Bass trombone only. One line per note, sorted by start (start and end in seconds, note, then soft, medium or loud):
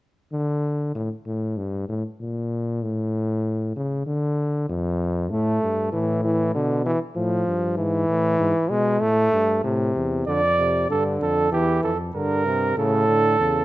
0.32 0.91 D3 medium
0.95 1.09 A2 medium
1.26 1.59 A2 medium
1.57 1.88 G2 medium
1.89 2.03 A2 medium
2.21 2.84 A#2 medium
2.82 3.75 A2 medium
3.76 4.06 C#3 medium
4.07 4.68 D3 medium
4.69 5.32 F2 medium
5.31 5.61 A2 medium
5.62 5.92 G2 medium
5.93 6.54 A2 medium
6.55 6.94 B2 medium
7.16 7.45 A2 medium
7.47 7.79 G2 medium
7.78 8.08 G#2 medium
8.08 8.39 A2 medium
8.39 8.54 G#2 medium
8.70 9.01 B2 medium
9.01 9.32 A2 medium
9.33 9.63 G2 medium
9.64 9.95 A2 medium
9.95 10.26 E2 medium
10.27 10.89 F2 medium
10.90 11.21 G2 medium
11.22 11.52 F2 medium
11.52 11.83 E2 medium
11.83 12.14 F2 medium
12.15 12.76 G2 medium
12.77 13.38 A2 medium
13.39 13.65 E2 medium